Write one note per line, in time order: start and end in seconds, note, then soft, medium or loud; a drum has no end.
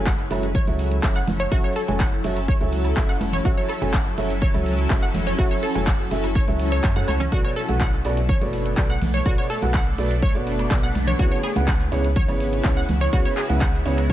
0.00 0.27 F#1 loud
0.00 7.28 F#3 medium
0.00 7.28 C#4 medium
0.00 7.28 E4 medium
0.00 7.28 A4 medium
0.06 0.11 F#5 medium
0.06 kick loud
0.06 clap loud
0.06 closed hi-hat soft
0.19 closed hi-hat soft
0.31 0.63 F#1 medium
0.31 0.44 F#3 medium
0.31 0.44 C#4 medium
0.31 0.43 F#4 medium
0.31 0.44 A4 medium
0.31 0.44 E5 medium
0.31 open hi-hat loud
0.31 high woodblock medium
0.43 closed hi-hat medium
0.54 0.62 C#5 loud
0.54 kick loud
0.54 closed hi-hat soft
0.54 low conga medium
0.67 0.99 C#2 medium
0.67 1.00 F#3 medium
0.67 1.00 C#4 medium
0.67 1.00 F#4 medium
0.67 1.00 A4 medium
0.67 1.00 E5 medium
0.67 open hi-hat medium
0.67 high conga medium
0.67 high woodblock soft
0.79 open hi-hat loud
0.92 closed hi-hat medium
1.03 1.22 F#1 medium
1.03 1.16 F#3 medium
1.03 1.16 C#4 medium
1.03 1.16 F#4 medium
1.03 1.16 A4 medium
1.03 1.16 E5 loud
1.03 kick loud
1.03 clap loud
1.03 closed hi-hat medium
1.15 1.23 F#5 medium
1.15 closed hi-hat soft
1.15 high woodblock medium
1.27 1.47 F#1 loud
1.27 open hi-hat loud
1.27 high conga loud
1.27 low conga medium
1.40 1.47 C#5 medium
1.40 closed hi-hat medium
1.52 1.61 F#1 loud
1.52 1.72 F#3 medium
1.52 1.72 C#4 medium
1.52 1.59 F#4 loud
1.52 1.72 F#4 medium
1.52 1.72 A4 medium
1.52 1.72 E5 loud
1.52 kick loud
1.52 closed hi-hat medium
1.52 high woodblock soft
1.64 1.69 C#5 medium
1.64 closed hi-hat soft
1.76 1.79 A4 medium
1.76 open hi-hat loud
1.88 2.20 F#1 loud
1.88 2.00 F#3 medium
1.88 2.00 C#4 medium
1.88 2.00 F#4 medium
1.88 2.00 A4 medium
1.88 2.00 G#5 medium
1.88 closed hi-hat soft
1.88 high conga medium
2.00 2.05 F#5 medium
2.00 kick loud
2.00 clap loud
2.00 closed hi-hat medium
2.00 high woodblock medium
2.12 closed hi-hat soft
2.24 2.57 F#1 medium
2.24 2.37 F#3 medium
2.24 2.37 C#4 medium
2.24 2.37 F#4 medium
2.24 2.37 A4 medium
2.24 2.37 E5 loud
2.24 open hi-hat loud
2.37 closed hi-hat medium
2.37 high woodblock soft
2.48 2.56 C#5 loud
2.48 kick loud
2.48 closed hi-hat soft
2.61 2.93 C#2 medium
2.61 2.94 F#3 medium
2.61 2.94 C#4 medium
2.61 2.94 F#4 medium
2.61 2.94 A4 medium
2.61 2.94 E5 medium
2.61 closed hi-hat soft
2.61 high conga medium
2.73 open hi-hat loud
2.84 closed hi-hat medium
2.84 high woodblock medium
2.97 3.16 F#1 medium
2.97 3.10 F#3 loud
2.97 3.10 C#4 medium
2.97 3.10 F#4 medium
2.97 3.10 A4 medium
2.97 3.10 E5 loud
2.97 kick loud
2.97 clap loud
2.97 closed hi-hat medium
3.09 3.16 F#5 medium
3.09 closed hi-hat soft
3.21 3.40 F#1 medium
3.21 open hi-hat loud
3.21 high conga medium
3.21 high woodblock soft
3.32 3.40 C#5 medium
3.32 closed hi-hat medium
3.32 low conga medium
3.45 3.55 F#1 loud
3.45 3.65 F#3 medium
3.45 3.65 C#4 medium
3.45 3.52 F#4 loud
3.45 3.65 F#4 medium
3.45 3.65 A4 medium
3.45 3.65 E5 medium
3.45 kick loud
3.45 closed hi-hat soft
3.58 3.62 C#5 medium
3.58 closed hi-hat soft
3.69 3.72 A4 medium
3.69 open hi-hat loud
3.69 high woodblock medium
3.81 4.14 F#1 loud
3.81 3.94 F#3 medium
3.81 3.94 C#4 medium
3.81 3.94 F#4 medium
3.81 3.94 A4 medium
3.81 3.94 G#5 medium
3.81 closed hi-hat medium
3.81 high conga medium
3.93 3.98 F#5 medium
3.93 kick loud
3.93 clap loud
3.93 closed hi-hat soft
4.06 closed hi-hat soft
4.06 high woodblock soft
4.18 4.50 F#1 medium
4.18 4.31 F#3 medium
4.18 4.31 C#4 medium
4.18 4.31 F#4 medium
4.18 4.31 A4 medium
4.18 4.31 E5 loud
4.18 open hi-hat loud
4.30 closed hi-hat medium
4.42 4.49 C#5 loud
4.42 kick loud
4.42 closed hi-hat soft
4.42 low conga medium
4.54 4.86 C#2 medium
4.54 4.88 F#3 medium
4.54 4.87 C#4 medium
4.54 4.88 F#4 medium
4.54 4.88 A4 medium
4.54 4.87 E5 medium
4.54 open hi-hat medium
4.54 high conga medium
4.54 high woodblock medium
4.66 open hi-hat loud
4.79 closed hi-hat soft
4.90 5.09 F#1 medium
4.90 5.03 F#3 loud
4.90 5.03 C#4 medium
4.90 5.03 F#4 medium
4.90 5.03 A4 medium
4.90 5.03 E5 loud
4.90 kick loud
4.90 clap loud
4.90 closed hi-hat soft
4.90 high woodblock soft
5.03 5.09 F#5 medium
5.03 closed hi-hat soft
5.14 5.34 F#1 loud
5.14 open hi-hat loud
5.14 high conga medium
5.14 low conga medium
5.27 5.34 C#5 medium
5.27 closed hi-hat soft
5.38 5.48 F#1 loud
5.38 5.59 F#3 medium
5.38 5.59 C#4 medium
5.38 5.46 F#4 loud
5.38 5.59 F#4 medium
5.38 5.59 A4 medium
5.38 5.59 E5 loud
5.38 kick loud
5.38 closed hi-hat soft
5.38 high woodblock medium
5.51 5.56 C#5 medium
5.51 closed hi-hat soft
5.63 5.66 A4 medium
5.63 open hi-hat loud
5.75 6.07 F#1 loud
5.75 5.88 F#3 medium
5.75 5.88 C#4 medium
5.75 5.88 F#4 medium
5.75 5.88 A4 medium
5.75 5.88 G#5 medium
5.75 closed hi-hat soft
5.75 high conga medium
5.75 high woodblock soft
5.87 5.92 F#5 medium
5.87 kick loud
5.87 clap loud
5.87 closed hi-hat soft
6.00 closed hi-hat soft
6.11 6.44 F#1 medium
6.11 6.24 F#3 medium
6.11 6.24 C#4 medium
6.11 6.24 F#4 medium
6.11 6.24 A4 medium
6.11 6.24 E5 loud
6.11 open hi-hat loud
6.24 closed hi-hat medium
6.24 high woodblock medium
6.35 6.43 C#5 loud
6.35 kick loud
6.35 closed hi-hat soft
6.47 6.80 C#2 medium
6.47 6.81 F#3 medium
6.47 6.81 C#4 medium
6.47 6.81 F#4 medium
6.47 6.81 A4 medium
6.47 6.81 E5 medium
6.47 closed hi-hat soft
6.47 high conga medium
6.60 open hi-hat loud
6.60 high woodblock soft
6.72 6.77 C#5 medium
6.72 closed hi-hat soft
6.84 7.03 F#2 medium
6.84 6.89 C#5 medium
6.84 kick loud
6.84 clap loud
6.84 closed hi-hat soft
6.96 7.09 F#3 medium
6.96 7.09 C#4 medium
6.96 7.09 F#4 medium
6.96 7.09 A4 medium
6.96 7.01 F#5 medium
6.96 7.09 F#5 medium
6.96 closed hi-hat soft
7.08 7.27 C#2 medium
7.08 7.13 C#5 medium
7.08 open hi-hat loud
7.08 high conga medium
7.08 high woodblock medium
7.20 7.27 C#4 medium
7.20 closed hi-hat soft
7.20 low conga medium
7.32 7.42 B1 medium
7.32 7.53 B2 medium
7.32 11.15 A3 medium
7.32 14.13 B3 medium
7.32 7.53 B3 medium
7.32 11.16 D4 medium
7.32 7.39 F#4 loud
7.32 7.53 F#4 medium
7.32 7.53 A4 medium
7.32 7.52 D5 medium
7.32 kick loud
7.32 closed hi-hat soft
7.45 7.49 C#5 medium
7.45 closed hi-hat soft
7.56 7.59 A4 medium
7.56 open hi-hat loud
7.56 high woodblock soft
7.69 8.01 B1 loud
7.69 7.81 B2 medium
7.69 7.81 B3 medium
7.69 7.81 F#4 medium
7.69 7.81 A4 medium
7.69 7.81 F#5 medium
7.69 closed hi-hat soft
7.69 high conga medium
7.81 7.85 F#5 medium
7.81 kick loud
7.81 clap loud
7.81 closed hi-hat soft
7.93 closed hi-hat soft
8.05 8.37 B1 medium
8.05 8.18 B2 medium
8.05 8.18 B3 medium
8.05 8.18 F#4 medium
8.05 8.18 A4 medium
8.05 8.18 D5 loud
8.05 open hi-hat loud
8.05 high woodblock medium
8.17 closed hi-hat medium
8.28 8.36 C#5 loud
8.28 kick loud
8.28 closed hi-hat soft
8.28 low conga medium
8.41 8.73 F#1 medium
8.41 8.75 B2 medium
8.41 8.75 B3 medium
8.41 8.75 F#4 medium
8.41 8.75 A4 medium
8.41 8.75 D5 medium
8.41 open hi-hat medium
8.41 high conga medium
8.41 high woodblock soft
8.53 open hi-hat loud
8.66 closed hi-hat soft
8.77 8.97 B1 medium
8.77 8.90 B2 medium
8.77 8.90 B3 medium
8.77 8.90 F#4 medium
8.77 8.90 A4 medium
8.77 8.90 D5 loud
8.77 kick loud
8.77 clap loud
8.77 closed hi-hat soft
8.90 8.97 F#5 medium
8.90 closed hi-hat soft
8.90 high woodblock medium
9.01 9.21 B1 loud
9.01 open hi-hat loud
9.01 high conga medium
9.01 low conga medium
9.14 9.21 C#5 medium
9.14 closed hi-hat soft
9.26 9.36 B1 loud
9.26 9.46 B2 medium
9.26 9.46 B3 medium
9.26 9.33 F#4 medium
9.26 9.46 F#4 medium
9.26 9.46 A4 medium
9.26 9.46 D5 loud
9.26 kick loud
9.26 closed hi-hat medium
9.26 high woodblock soft
9.38 9.43 C#5 medium
9.38 closed hi-hat soft
9.50 9.53 A4 medium
9.50 open hi-hat loud
9.62 9.94 B1 loud
9.62 9.75 B2 medium
9.62 9.75 B3 medium
9.62 9.75 F#4 medium
9.62 9.75 A4 medium
9.62 9.75 F#5 medium
9.62 closed hi-hat medium
9.62 high conga medium
9.74 9.79 F#5 medium
9.74 kick loud
9.74 clap loud
9.74 closed hi-hat soft
9.74 high woodblock medium
9.87 closed hi-hat soft
9.98 10.31 B1 medium
9.98 10.11 B2 medium
9.98 10.11 B3 medium
9.98 10.11 F#4 medium
9.98 10.11 A4 medium
9.98 10.11 D5 medium
9.98 open hi-hat loud
10.11 closed hi-hat medium
10.11 high woodblock soft
10.22 10.30 C#5 loud
10.22 kick loud
10.22 closed hi-hat soft
10.35 10.67 F#1 medium
10.35 10.68 B2 medium
10.35 10.68 B3 medium
10.35 10.68 F#4 medium
10.35 10.68 A4 medium
10.35 10.68 D5 medium
10.35 closed hi-hat soft
10.35 high conga medium
10.47 open hi-hat medium
10.59 closed hi-hat medium
10.59 high woodblock medium
10.71 10.90 B1 medium
10.71 10.84 B2 loud
10.71 10.84 B3 medium
10.71 10.84 F#4 medium
10.71 10.84 A4 medium
10.71 10.84 D5 loud
10.71 kick loud
10.71 clap loud
10.71 closed hi-hat medium
10.83 10.90 F#5 medium
10.83 closed hi-hat soft
10.95 11.14 B1 loud
10.95 open hi-hat medium
10.95 high conga loud
10.95 high woodblock soft
11.07 11.14 C#5 medium
11.07 closed hi-hat soft
11.07 low conga medium
11.19 11.29 C#2 medium
11.19 14.13 C#3 medium
11.19 11.40 C#3 medium
11.19 14.13 G#3 medium
11.19 11.40 B3 medium
11.19 11.40 E4 medium
11.19 14.13 E4 medium
11.19 11.27 F#4 loud
11.19 11.40 G#4 medium
11.19 11.40 C#5 loud
11.19 kick loud
11.19 closed hi-hat soft
11.32 11.36 C#5 medium
11.32 closed hi-hat soft
11.43 11.46 G#4 medium
11.43 open hi-hat loud
11.43 high woodblock medium
11.56 11.88 C#2 loud
11.56 11.68 C#3 medium
11.56 11.68 B3 medium
11.56 11.68 E4 medium
11.56 11.68 G#4 medium
11.56 11.68 F#5 medium
11.56 closed hi-hat medium
11.56 high conga medium
11.68 11.72 F#5 medium
11.68 kick loud
11.68 clap loud
11.68 closed hi-hat medium
11.80 closed hi-hat soft
11.80 high woodblock soft
11.92 12.24 C#2 medium
11.92 12.05 C#3 medium
11.92 12.05 B3 medium
11.92 12.05 E4 medium
11.92 12.05 G#4 medium
11.92 12.05 C#5 loud
11.92 open hi-hat loud
12.04 closed hi-hat medium
12.16 12.23 C#5 loud
12.16 kick loud
12.16 closed hi-hat medium
12.16 low conga medium
12.28 12.60 G#1 medium
12.28 12.62 C#3 medium
12.28 12.62 B3 medium
12.28 12.62 E4 medium
12.28 12.62 G#4 medium
12.28 12.62 C#5 medium
12.28 open hi-hat medium
12.28 high conga medium
12.28 high woodblock medium
12.40 open hi-hat loud
12.53 closed hi-hat medium
12.64 12.84 C#2 medium
12.64 12.77 C#3 medium
12.64 12.77 B3 medium
12.64 12.77 E4 medium
12.64 12.77 G#4 medium
12.64 12.77 C#5 loud
12.64 kick loud
12.64 clap loud
12.64 closed hi-hat medium
12.64 high woodblock soft
12.77 12.84 F#5 medium
12.77 closed hi-hat soft
12.89 13.08 C#2 medium
12.89 open hi-hat medium
12.89 high conga loud
12.89 low conga medium
13.01 13.08 C#5 medium
13.01 closed hi-hat soft
13.13 13.23 C#2 medium
13.13 13.33 C#3 medium
13.13 13.33 B3 medium
13.13 13.33 E4 medium
13.13 13.20 F#4 loud
13.13 13.33 G#4 medium
13.13 13.33 C#5 loud
13.13 kick loud
13.13 closed hi-hat medium
13.13 high woodblock medium
13.25 13.30 C#5 medium
13.25 open hi-hat medium
13.37 13.40 G#4 medium
13.37 clap medium
13.37 open hi-hat loud
13.49 13.82 C#2 loud
13.49 13.62 C#3 medium
13.49 13.62 B3 medium
13.49 13.62 E4 medium
13.49 13.62 G#4 medium
13.49 13.62 F#5 medium
13.49 closed hi-hat medium
13.49 high conga medium
13.49 high woodblock soft
13.61 13.66 F#5 medium
13.61 kick loud
13.61 clap loud
13.61 closed hi-hat medium
13.74 closed hi-hat soft
13.85 14.13 C#2 medium
13.85 13.98 C#3 medium
13.85 13.98 B3 medium
13.85 13.98 E4 medium
13.85 13.98 G#4 medium
13.85 13.98 C#5 loud
13.85 open hi-hat loud
13.98 closed hi-hat medium
13.98 high woodblock medium
14.10 14.13 C#5 loud
14.10 kick loud